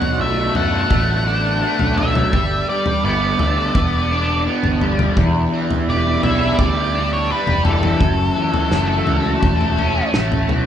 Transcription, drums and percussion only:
0, 0, Header, 1, 2, 480
1, 0, Start_track
1, 0, Key_signature, 2, "minor"
1, 0, Tempo, 709220
1, 1576, Time_signature, 4, 2, 24, 8
1, 7215, End_track
2, 0, Start_track
2, 0, Title_t, "Drums"
2, 12, Note_on_c, 9, 43, 84
2, 79, Note_off_c, 9, 43, 0
2, 373, Note_on_c, 9, 43, 75
2, 440, Note_off_c, 9, 43, 0
2, 612, Note_on_c, 9, 43, 80
2, 614, Note_on_c, 9, 36, 108
2, 680, Note_off_c, 9, 43, 0
2, 681, Note_off_c, 9, 36, 0
2, 1213, Note_on_c, 9, 43, 77
2, 1281, Note_off_c, 9, 43, 0
2, 1337, Note_on_c, 9, 43, 81
2, 1405, Note_off_c, 9, 43, 0
2, 1457, Note_on_c, 9, 43, 76
2, 1457, Note_on_c, 9, 47, 75
2, 1525, Note_off_c, 9, 43, 0
2, 1525, Note_off_c, 9, 47, 0
2, 1578, Note_on_c, 9, 36, 101
2, 1578, Note_on_c, 9, 43, 83
2, 1645, Note_off_c, 9, 36, 0
2, 1646, Note_off_c, 9, 43, 0
2, 1934, Note_on_c, 9, 43, 82
2, 2002, Note_off_c, 9, 43, 0
2, 2296, Note_on_c, 9, 43, 81
2, 2364, Note_off_c, 9, 43, 0
2, 2538, Note_on_c, 9, 36, 117
2, 2539, Note_on_c, 9, 43, 80
2, 2606, Note_off_c, 9, 36, 0
2, 2607, Note_off_c, 9, 43, 0
2, 3138, Note_on_c, 9, 43, 76
2, 3206, Note_off_c, 9, 43, 0
2, 3258, Note_on_c, 9, 43, 71
2, 3326, Note_off_c, 9, 43, 0
2, 3377, Note_on_c, 9, 43, 85
2, 3377, Note_on_c, 9, 47, 74
2, 3445, Note_off_c, 9, 43, 0
2, 3445, Note_off_c, 9, 47, 0
2, 3498, Note_on_c, 9, 36, 105
2, 3499, Note_on_c, 9, 43, 78
2, 3566, Note_off_c, 9, 36, 0
2, 3566, Note_off_c, 9, 43, 0
2, 3861, Note_on_c, 9, 43, 87
2, 3929, Note_off_c, 9, 43, 0
2, 4219, Note_on_c, 9, 43, 83
2, 4287, Note_off_c, 9, 43, 0
2, 4459, Note_on_c, 9, 36, 114
2, 4459, Note_on_c, 9, 43, 86
2, 4526, Note_off_c, 9, 36, 0
2, 4526, Note_off_c, 9, 43, 0
2, 5058, Note_on_c, 9, 43, 82
2, 5126, Note_off_c, 9, 43, 0
2, 5177, Note_on_c, 9, 43, 84
2, 5245, Note_off_c, 9, 43, 0
2, 5299, Note_on_c, 9, 43, 77
2, 5299, Note_on_c, 9, 47, 73
2, 5367, Note_off_c, 9, 43, 0
2, 5367, Note_off_c, 9, 47, 0
2, 5417, Note_on_c, 9, 43, 79
2, 5418, Note_on_c, 9, 36, 103
2, 5485, Note_off_c, 9, 43, 0
2, 5486, Note_off_c, 9, 36, 0
2, 5777, Note_on_c, 9, 43, 85
2, 5845, Note_off_c, 9, 43, 0
2, 5898, Note_on_c, 9, 38, 66
2, 5966, Note_off_c, 9, 38, 0
2, 6138, Note_on_c, 9, 43, 75
2, 6206, Note_off_c, 9, 43, 0
2, 6380, Note_on_c, 9, 36, 109
2, 6380, Note_on_c, 9, 43, 81
2, 6448, Note_off_c, 9, 36, 0
2, 6448, Note_off_c, 9, 43, 0
2, 6503, Note_on_c, 9, 43, 73
2, 6571, Note_off_c, 9, 43, 0
2, 6623, Note_on_c, 9, 43, 74
2, 6691, Note_off_c, 9, 43, 0
2, 6862, Note_on_c, 9, 38, 78
2, 6862, Note_on_c, 9, 47, 69
2, 6929, Note_off_c, 9, 47, 0
2, 6930, Note_off_c, 9, 38, 0
2, 6983, Note_on_c, 9, 43, 86
2, 7050, Note_off_c, 9, 43, 0
2, 7101, Note_on_c, 9, 43, 74
2, 7101, Note_on_c, 9, 47, 77
2, 7169, Note_off_c, 9, 43, 0
2, 7169, Note_off_c, 9, 47, 0
2, 7215, End_track
0, 0, End_of_file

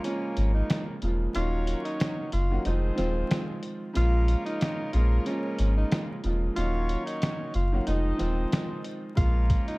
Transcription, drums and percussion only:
0, 0, Header, 1, 2, 480
1, 0, Start_track
1, 0, Key_signature, -5, "minor"
1, 0, Tempo, 652174
1, 993, Time_signature, 4, 2, 24, 8
1, 7199, End_track
2, 0, Start_track
2, 0, Title_t, "Drums"
2, 31, Note_on_c, 9, 42, 73
2, 105, Note_off_c, 9, 42, 0
2, 270, Note_on_c, 9, 42, 79
2, 344, Note_off_c, 9, 42, 0
2, 514, Note_on_c, 9, 42, 93
2, 518, Note_on_c, 9, 38, 119
2, 519, Note_on_c, 9, 40, 94
2, 587, Note_off_c, 9, 42, 0
2, 592, Note_off_c, 9, 38, 0
2, 593, Note_off_c, 9, 40, 0
2, 750, Note_on_c, 9, 42, 65
2, 824, Note_off_c, 9, 42, 0
2, 991, Note_on_c, 9, 42, 98
2, 1064, Note_off_c, 9, 42, 0
2, 1231, Note_on_c, 9, 42, 76
2, 1305, Note_off_c, 9, 42, 0
2, 1364, Note_on_c, 9, 42, 55
2, 1438, Note_off_c, 9, 42, 0
2, 1473, Note_on_c, 9, 42, 90
2, 1481, Note_on_c, 9, 38, 118
2, 1482, Note_on_c, 9, 40, 94
2, 1546, Note_off_c, 9, 42, 0
2, 1555, Note_off_c, 9, 38, 0
2, 1556, Note_off_c, 9, 40, 0
2, 1710, Note_on_c, 9, 42, 66
2, 1783, Note_off_c, 9, 42, 0
2, 1951, Note_on_c, 9, 42, 72
2, 2025, Note_off_c, 9, 42, 0
2, 2191, Note_on_c, 9, 42, 79
2, 2197, Note_on_c, 9, 38, 36
2, 2264, Note_off_c, 9, 42, 0
2, 2271, Note_off_c, 9, 38, 0
2, 2434, Note_on_c, 9, 42, 88
2, 2439, Note_on_c, 9, 38, 117
2, 2440, Note_on_c, 9, 40, 97
2, 2507, Note_off_c, 9, 42, 0
2, 2512, Note_off_c, 9, 38, 0
2, 2513, Note_off_c, 9, 40, 0
2, 2670, Note_on_c, 9, 42, 63
2, 2743, Note_off_c, 9, 42, 0
2, 2911, Note_on_c, 9, 42, 99
2, 2984, Note_off_c, 9, 42, 0
2, 3152, Note_on_c, 9, 42, 76
2, 3226, Note_off_c, 9, 42, 0
2, 3285, Note_on_c, 9, 42, 56
2, 3359, Note_off_c, 9, 42, 0
2, 3394, Note_on_c, 9, 42, 89
2, 3402, Note_on_c, 9, 38, 118
2, 3403, Note_on_c, 9, 40, 93
2, 3467, Note_off_c, 9, 42, 0
2, 3476, Note_off_c, 9, 38, 0
2, 3477, Note_off_c, 9, 40, 0
2, 3630, Note_on_c, 9, 42, 67
2, 3704, Note_off_c, 9, 42, 0
2, 3872, Note_on_c, 9, 42, 72
2, 3946, Note_off_c, 9, 42, 0
2, 4111, Note_on_c, 9, 42, 77
2, 4185, Note_off_c, 9, 42, 0
2, 4355, Note_on_c, 9, 42, 90
2, 4359, Note_on_c, 9, 38, 121
2, 4360, Note_on_c, 9, 40, 93
2, 4428, Note_off_c, 9, 42, 0
2, 4433, Note_off_c, 9, 38, 0
2, 4434, Note_off_c, 9, 40, 0
2, 4591, Note_on_c, 9, 42, 64
2, 4664, Note_off_c, 9, 42, 0
2, 4831, Note_on_c, 9, 42, 95
2, 4905, Note_off_c, 9, 42, 0
2, 5072, Note_on_c, 9, 42, 75
2, 5146, Note_off_c, 9, 42, 0
2, 5205, Note_on_c, 9, 42, 58
2, 5279, Note_off_c, 9, 42, 0
2, 5313, Note_on_c, 9, 42, 90
2, 5322, Note_on_c, 9, 38, 119
2, 5323, Note_on_c, 9, 40, 95
2, 5387, Note_off_c, 9, 42, 0
2, 5396, Note_off_c, 9, 38, 0
2, 5397, Note_off_c, 9, 40, 0
2, 5550, Note_on_c, 9, 42, 67
2, 5623, Note_off_c, 9, 42, 0
2, 5792, Note_on_c, 9, 42, 73
2, 5865, Note_off_c, 9, 42, 0
2, 6030, Note_on_c, 9, 42, 78
2, 6037, Note_on_c, 9, 38, 35
2, 6104, Note_off_c, 9, 42, 0
2, 6111, Note_off_c, 9, 38, 0
2, 6274, Note_on_c, 9, 42, 90
2, 6278, Note_on_c, 9, 38, 113
2, 6279, Note_on_c, 9, 40, 97
2, 6347, Note_off_c, 9, 42, 0
2, 6352, Note_off_c, 9, 38, 0
2, 6353, Note_off_c, 9, 40, 0
2, 6509, Note_on_c, 9, 42, 64
2, 6583, Note_off_c, 9, 42, 0
2, 6750, Note_on_c, 9, 42, 101
2, 6753, Note_on_c, 9, 36, 115
2, 6823, Note_off_c, 9, 42, 0
2, 6827, Note_off_c, 9, 36, 0
2, 6991, Note_on_c, 9, 42, 75
2, 6993, Note_on_c, 9, 36, 105
2, 7064, Note_off_c, 9, 42, 0
2, 7067, Note_off_c, 9, 36, 0
2, 7124, Note_on_c, 9, 42, 56
2, 7198, Note_off_c, 9, 42, 0
2, 7199, End_track
0, 0, End_of_file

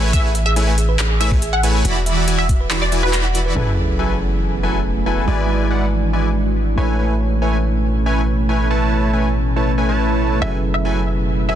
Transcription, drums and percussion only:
0, 0, Header, 1, 2, 480
1, 0, Start_track
1, 0, Key_signature, 3, "major"
1, 0, Tempo, 428571
1, 150, Time_signature, 4, 2, 24, 8
1, 12939, End_track
2, 0, Start_track
2, 0, Title_t, "Drums"
2, 151, Note_on_c, 9, 36, 114
2, 151, Note_on_c, 9, 42, 76
2, 263, Note_off_c, 9, 36, 0
2, 263, Note_off_c, 9, 42, 0
2, 391, Note_on_c, 9, 42, 64
2, 503, Note_off_c, 9, 42, 0
2, 631, Note_on_c, 9, 42, 77
2, 743, Note_off_c, 9, 42, 0
2, 871, Note_on_c, 9, 42, 67
2, 983, Note_off_c, 9, 42, 0
2, 1111, Note_on_c, 9, 39, 115
2, 1111, Note_on_c, 9, 42, 78
2, 1223, Note_off_c, 9, 39, 0
2, 1223, Note_off_c, 9, 42, 0
2, 1351, Note_on_c, 9, 42, 67
2, 1463, Note_off_c, 9, 42, 0
2, 1474, Note_on_c, 9, 36, 56
2, 1586, Note_off_c, 9, 36, 0
2, 1591, Note_on_c, 9, 42, 82
2, 1703, Note_off_c, 9, 42, 0
2, 1830, Note_on_c, 9, 42, 66
2, 1942, Note_off_c, 9, 42, 0
2, 2071, Note_on_c, 9, 42, 78
2, 2183, Note_off_c, 9, 42, 0
2, 2310, Note_on_c, 9, 42, 69
2, 2422, Note_off_c, 9, 42, 0
2, 2550, Note_on_c, 9, 42, 85
2, 2662, Note_off_c, 9, 42, 0
2, 2790, Note_on_c, 9, 36, 60
2, 2791, Note_on_c, 9, 42, 71
2, 2902, Note_off_c, 9, 36, 0
2, 2903, Note_off_c, 9, 42, 0
2, 3031, Note_on_c, 9, 39, 114
2, 3031, Note_on_c, 9, 42, 78
2, 3143, Note_off_c, 9, 39, 0
2, 3143, Note_off_c, 9, 42, 0
2, 3271, Note_on_c, 9, 42, 68
2, 3383, Note_off_c, 9, 42, 0
2, 3510, Note_on_c, 9, 39, 59
2, 3510, Note_on_c, 9, 42, 85
2, 3622, Note_off_c, 9, 39, 0
2, 3622, Note_off_c, 9, 42, 0
2, 3750, Note_on_c, 9, 42, 69
2, 3862, Note_off_c, 9, 42, 0
2, 12939, End_track
0, 0, End_of_file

